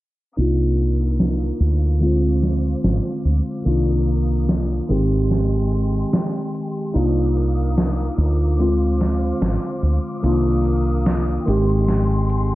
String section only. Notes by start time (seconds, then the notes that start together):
0.37 A#4 F5 D6 D#6
2.02 C5
3.66 A#4 D#6
4.89 G#3 G5 C6
6.95 A#4 F5 D6 D#6
8.60 C5 F5
10.24 A#4 F5 D#6
11.47 G#3 G5 C6